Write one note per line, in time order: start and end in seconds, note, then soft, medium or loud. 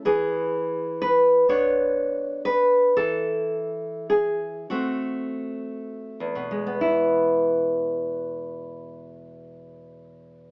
0.05 1.45 E3 soft
0.05 0.97 G#4 medium
1.02 1.47 B4 medium
1.49 2.92 B3 soft
1.49 2.93 D4 soft
1.49 2.41 C#5 medium
2.45 2.94 B4 medium
2.97 4.66 E3 soft
2.97 4.06 A4 medium
4.10 4.67 G#4 medium
4.70 6.78 A3 soft
4.70 6.51 C4 soft
4.70 6.66 F#4 medium
6.20 10.51 E2 soft
6.35 10.51 B2 soft
6.51 10.51 G#3 soft
6.67 10.51 B3 soft
6.81 10.51 E4 soft